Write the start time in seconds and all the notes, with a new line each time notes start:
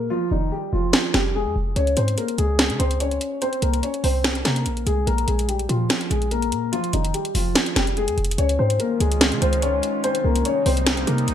0.10 F3 F4
0.31 F1 D#3 D#4
0.52 G3 G4
0.73 F1 F3 F4
0.93 snare
1.14 F1 G3 G4, snare
1.35 G#3 G#4
1.46 F2
1.56 F1
1.76 C#2 C#4 C#5, closed hi-hat
1.87 closed hi-hat
1.97 G#2 C4 C5, closed hi-hat
2.08 closed hi-hat
2.18 A#3 A#4, closed hi-hat
2.28 closed hi-hat
2.38 C#2 G#3 G#4, closed hi-hat
2.59 snare, closed hi-hat
2.70 C#3, closed hi-hat
2.79 C#2 C4 C5, closed hi-hat
2.91 closed hi-hat
3.00 C#4 C#5, closed hi-hat
3.11 closed hi-hat
3.21 closed hi-hat
3.42 C4 C5, closed hi-hat
3.53 closed hi-hat
3.62 C2 A#3 A#4, closed hi-hat
3.74 closed hi-hat
3.83 C#4 C#5, closed hi-hat
3.94 closed hi-hat
4.04 C2 C4 C5, open hi-hat
4.24 snare, closed hi-hat
4.35 closed hi-hat
4.45 C3 A#3 A#4, snare, closed hi-hat
4.56 closed hi-hat
4.66 A#1, closed hi-hat
4.77 closed hi-hat
4.86 C2 G#3 G#4, closed hi-hat
5.07 A#1 A#3 A#4, closed hi-hat
5.18 closed hi-hat
5.28 A#1 G#3 G#4, closed hi-hat
5.39 closed hi-hat
5.48 G3 G4, closed hi-hat
5.59 closed hi-hat
5.69 A#2 F3 F4, closed hi-hat
5.90 snare, closed hi-hat
6.01 closed hi-hat
6.11 A#1 G#3 G#4, closed hi-hat
6.22 closed hi-hat
6.31 A#3 A#4, closed hi-hat
6.42 closed hi-hat
6.52 A#2, closed hi-hat
6.72 F3 F4, closed hi-hat
6.84 closed hi-hat
6.93 F1 D#3 D#4, closed hi-hat
7.05 closed hi-hat
7.14 G3 G4, closed hi-hat
7.25 closed hi-hat
7.35 F1 F3 F4, open hi-hat
7.55 snare, closed hi-hat
7.66 closed hi-hat
7.76 F1 G3 G4, snare, closed hi-hat
7.87 closed hi-hat
7.97 G#3 G#4, closed hi-hat
8.08 F2, closed hi-hat
8.18 F1, closed hi-hat
8.25 closed hi-hat
8.31 closed hi-hat
8.38 C#2 D#3 G#3 C#4 F4 C#5, closed hi-hat
8.49 closed hi-hat
8.59 G#2 C4 C5
8.70 closed hi-hat
8.80 A#3 A#4, closed hi-hat
9.00 C#2 G#3 G#4, closed hi-hat
9.12 closed hi-hat
9.21 snare, closed hi-hat
9.32 C#3, closed hi-hat
9.42 C#2 C4 C5, closed hi-hat
9.53 closed hi-hat
9.62 C#4 C#5, closed hi-hat
9.83 closed hi-hat
10.04 C3 G3 A#3 C4 D#4 C5, closed hi-hat
10.15 closed hi-hat
10.24 C2 A#3 A#4
10.36 closed hi-hat
10.45 C#4 C#5, closed hi-hat
10.66 C2 C4 C5, open hi-hat
10.77 closed hi-hat
10.87 snare, closed hi-hat
10.97 closed hi-hat
11.07 C3 A#3 A#4, closed hi-hat
11.18 closed hi-hat
11.28 A#1, closed hi-hat